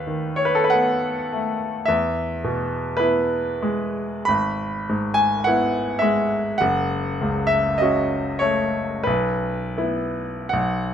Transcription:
0.00 1.85 D#2 soft
0.00 0.34 B4 medium
0.07 1.11 D#3 soft
0.36 0.46 C#5 medium
0.45 0.56 B4 medium
0.55 0.65 A4 medium
0.64 0.75 B4 medium
0.70 1.30 B3 soft
0.70 1.88 F#5 medium
1.33 1.89 A3 soft
1.86 4.24 E2 medium
1.86 2.98 E5 medium
2.44 3.36 B2 soft
2.97 3.58 B3 soft
2.97 3.58 E4 soft
2.97 4.27 B4 medium
3.62 4.29 G#3 soft
4.25 6.57 G#1 medium
4.25 5.17 B5 medium
4.89 5.81 G#2 soft
5.14 5.45 G#5 medium
5.44 5.99 B3 soft
5.44 6.00 E4 soft
5.44 6.02 F#5 medium
5.99 6.61 G#3 soft
5.99 6.59 E5 medium
6.58 9.02 F#1 medium
6.58 7.50 F#5 medium
7.21 8.19 C#2 soft
7.47 7.80 E5 medium
7.78 8.39 C#4 soft
7.78 8.39 F#4 soft
7.78 8.41 D#5 medium
8.39 9.05 A3 soft
8.39 9.04 C#5 medium
9.03 10.49 B1 medium
9.03 10.52 B4 medium
9.78 10.49 B3 soft
9.78 10.49 E4 soft
10.49 10.94 B1 medium
10.49 10.94 F#5 medium

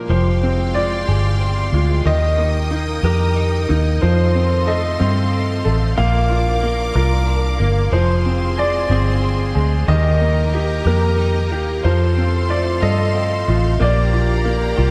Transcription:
0.00 0.12 A#2 medium
0.00 0.10 F3 soft
0.00 0.13 A#3 soft
0.00 0.10 D4 soft
0.08 1.04 F1 medium
0.08 2.04 F3 medium
0.08 2.02 F3 medium
0.08 2.04 G#3 medium
0.08 1.07 G4 medium
0.08 0.78 C5 medium
0.08 2.03 F5 medium
0.08 2.03 G5 medium
0.08 2.04 C6 medium
0.42 1.38 C4 soft
0.42 1.70 C4 soft
0.74 1.72 G#3 soft
0.74 1.73 F4 soft
0.74 2.10 D5 medium
1.07 1.70 G1 medium
1.07 2.04 G4 soft
1.07 2.03 G#4 soft
1.40 2.12 C4 medium
1.73 2.04 D2 medium
1.73 2.13 G#3 medium
1.73 2.06 F4 soft
2.04 3.00 D#2 medium
2.04 4.00 D#3 medium
2.04 3.98 D#3 medium
2.04 3.02 G4 medium
2.04 4.00 A#4 medium
2.04 5.93 D#5 medium
2.04 3.07 D#5 medium
2.04 3.99 G5 medium
2.04 3.99 D#6 medium
2.37 3.65 A#3 soft
2.37 3.36 D#4 soft
2.71 3.68 A#3 soft
2.71 3.67 D#4 soft
3.03 3.65 F2 medium
3.03 4.01 G4 medium
3.03 3.99 G4 soft
3.03 3.74 A#4 medium
3.36 4.08 D#4 medium
3.69 4.00 D#2 medium
3.69 4.09 A#3 soft
3.69 4.01 D#4 medium
4.01 4.96 F2 medium
4.01 5.96 D#3 medium
4.01 5.94 F3 medium
4.01 4.99 F4 medium
4.01 5.96 A4 medium
4.01 4.69 C5 medium
4.01 9.85 F5 medium
4.01 5.96 C6 medium
4.34 5.31 C4 soft
4.34 4.98 C4 soft
4.67 5.64 A3 medium
4.67 5.63 A4 medium
4.67 6.02 D#5 medium
5.00 5.62 G2 medium
5.00 5.95 C4 medium
5.00 5.97 F4 medium
5.32 6.04 C4 medium
5.65 5.96 A1 medium
5.65 6.04 A3 medium
5.65 5.97 A4 medium
5.96 6.92 A#1 medium
5.96 7.90 F3 medium
5.96 6.61 A#3 medium
5.96 6.92 F4 medium
5.96 7.91 A#4 medium
5.96 7.91 D5 medium
5.96 6.99 F5 medium
5.96 7.91 D6 medium
6.29 7.25 D4 soft
6.29 6.94 F4 medium
6.61 7.57 A#3 soft
6.61 7.58 A#3 soft
6.93 7.57 C2 medium
6.93 7.92 F4 medium
6.93 7.90 F4 medium
6.93 7.65 A#4 medium
7.26 7.99 D4 medium
7.58 7.91 G1 medium
7.58 7.99 A#3 medium
7.58 7.92 A#3 medium
7.91 8.87 F1 medium
7.91 9.86 F3 medium
7.91 9.85 F3 medium
7.91 8.89 G#4 medium
7.91 9.87 G#4 medium
7.91 8.60 C5 medium
7.91 9.87 C5 medium
7.91 9.87 C6 medium
8.25 9.21 C4 medium
8.25 8.89 C4 soft
8.56 9.54 G#3 medium
8.56 9.54 G#4 soft
8.56 9.93 D5 medium
8.90 9.52 G1 medium
8.90 9.86 C4 medium
8.90 9.87 G#4 medium
9.22 9.95 C4 medium
9.55 9.87 D2 medium
9.55 9.95 G#3 medium
9.55 9.87 G#4 medium
9.87 10.82 D#2 medium
9.87 11.82 D#3 medium
9.87 11.80 D#3 medium
9.87 10.83 G4 medium
9.87 11.83 G4 medium
9.87 11.83 A#4 medium
9.87 10.89 D#5 medium
9.87 11.83 D#5 medium
9.87 11.83 A#5 medium
10.20 10.86 A#3 medium
10.20 11.16 D#4 soft
10.53 11.49 A#3 medium
10.53 11.50 G4 medium
10.84 11.52 F2 medium
10.84 11.82 A#3 medium
10.84 11.83 G4 medium
10.84 11.56 A#4 medium
11.17 11.90 D#4 medium
11.50 11.83 D#2 medium
11.50 11.90 A#3 medium
11.50 11.84 G4 medium
11.83 12.79 F2 medium
11.83 13.79 F3 medium
11.83 13.76 F3 medium
11.83 12.80 F4 medium
11.83 13.78 A4 medium
11.83 12.52 C5 medium
11.83 13.79 C5 medium
11.83 14.91 F5 medium
11.83 13.78 C6 medium
12.15 13.13 C4 medium
12.15 13.44 C4 soft
12.48 13.47 A3 medium
12.48 13.47 F4 medium
12.48 12.57 D5 medium
12.80 13.44 G2 medium
12.80 13.79 F4 medium
12.80 13.77 A4 medium
12.80 13.83 D#5 medium
13.14 13.86 C4 medium
13.48 13.79 A1 medium
13.48 13.87 A3 medium
13.48 13.79 F4 medium
13.80 14.74 A#1 loud
13.80 14.91 F3 medium
13.80 14.44 A#3 medium
13.80 14.91 G4 medium
13.80 14.76 G4 medium
13.80 14.91 D5 medium
13.80 14.91 A#5 medium
14.12 14.91 D4 soft
14.12 14.76 F4 medium
14.44 14.91 A#3 medium
14.76 14.91 C2 medium
14.76 14.91 F4 medium
14.76 14.91 G4 medium

